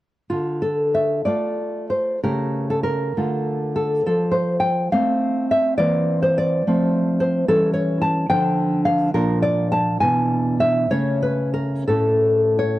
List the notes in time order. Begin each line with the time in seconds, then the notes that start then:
0.30 D3 F4
0.62 A4
0.95 E5
1.25 A3 F4 D5
1.90 C5
2.23 C#3 A3 G4 A#4
2.70 A4
2.83 A#4
3.17 D3 A3 F4
3.76 A4
4.06 F3 A4
4.31 C5
4.60 G5
4.92 A3 C4 F5
5.51 E5
5.78 E3 A#3 C4 D5
6.22 C5
6.38 D5
6.67 F3 A3 C4
7.20 C5
7.48 E3 G3 C#4 A4
7.74 C#5
8.02 A5
8.30 D3 F3 D4 G5
8.85 F5
9.14 A#2 F3 D4 A#4
9.42 D5
9.72 A5
10.00 B2 E3 D4 G#5
10.60 E5
10.91 C#3 A3 C#4 C#5
11.22 B4
11.54 A#4
11.88 A2 A3 C#4 A4
12.59 C#5